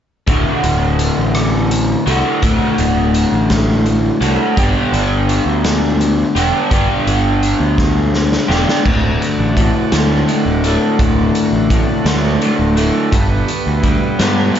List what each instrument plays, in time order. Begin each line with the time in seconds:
0.27 picked electric bass D1, overdriven electric guitar D2 A2 D3 A3 F#4, kick, closed hi-hat
0.64 picked electric bass D1, closed hi-hat
0.99 closed hi-hat
1.18 picked electric bass A1
1.35 cross-stick, closed hi-hat
1.71 closed hi-hat
2.06 picked electric bass C2, overdriven electric guitar D2 A2 D3 A3 F#4, closed hi-hat
2.41 picked electric bass D1, overdriven electric guitar D2 A2 D3 A3 F#4, kick, closed hi-hat
2.78 picked electric bass D1, closed hi-hat
3.14 closed hi-hat
3.32 picked electric bass A1
3.50 kick, snare, closed hi-hat
3.86 closed hi-hat
4.21 picked electric bass C2, overdriven electric guitar D2 A2 D3 A3 F#4, closed hi-hat
4.56 picked electric bass G1, overdriven electric guitar G2 D3 G3 B3 D4 G4, kick, closed hi-hat
4.92 picked electric bass G1, closed hi-hat
5.29 closed hi-hat
5.46 picked electric bass D2
5.64 snare, closed hi-hat
6.01 closed hi-hat
6.35 picked electric bass E1, overdriven electric guitar G2 D3 G3 B3 D4 G4, closed hi-hat
6.71 picked electric bass G1, overdriven electric guitar G2 D3 G3 B3 D4 G4, kick, closed hi-hat
7.07 picked electric bass G1, closed hi-hat
7.43 closed hi-hat
7.60 picked electric bass D2
7.78 kick, snare
8.14 snare
8.32 snare
8.48 picked electric bass E1, overdriven electric guitar G2 D3 G3 B3 D4 G4, snare
8.69 snare
8.85 picked electric bass D1, overdriven electric guitar D2, tonewheel organ A3 D4 F#4 A4 D5, kick, crash
9.22 closed hi-hat
9.39 picked electric bass A1
9.57 overdriven electric guitar A2, kick, closed hi-hat
9.92 picked electric bass D2, overdriven electric guitar D3, snare, closed hi-hat
10.28 overdriven electric guitar A2, closed hi-hat
10.46 picked electric bass D1
10.64 overdriven electric guitar A3, closed hi-hat
10.99 picked electric bass D1, overdriven electric guitar D2, kick, closed hi-hat
11.35 closed hi-hat
11.53 picked electric bass A1
11.70 overdriven electric guitar A2, kick, closed hi-hat
12.05 picked electric bass D2, overdriven electric guitar D3, snare, closed hi-hat
12.41 overdriven electric guitar A2, closed hi-hat
12.59 picked electric bass D1
12.76 overdriven electric guitar A3, closed hi-hat
13.12 picked electric bass G1, overdriven electric guitar G2, tonewheel organ B3 G4 B4, kick, closed hi-hat
13.48 closed hi-hat
13.67 picked electric bass D2
13.83 overdriven electric guitar G3, kick, closed hi-hat
14.19 picked electric bass G2, overdriven electric guitar B3, snare, closed hi-hat
14.54 overdriven electric guitar G3, closed hi-hat